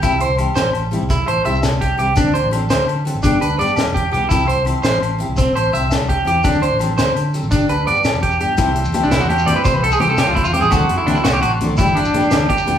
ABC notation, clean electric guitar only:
X:1
M:12/8
L:1/16
Q:3/8=112
K:C
V:1 name="Clean electric guitar"
E2 c2 z2 c2 z4 E2 c2 e2 z2 G2 G2 | D2 c2 z2 c2 z4 D2 B2 d2 z2 G2 G2 | E2 c2 z2 c2 z4 C2 c2 e2 z2 G2 G2 | D2 c2 z2 c2 z4 D2 B2 d2 z2 G2 G2 |
z4 z D E ^F G2 d B c B A _A G =A G =F E F G _A | ^F3 E D E F G F z3 E2 D6 G4 |]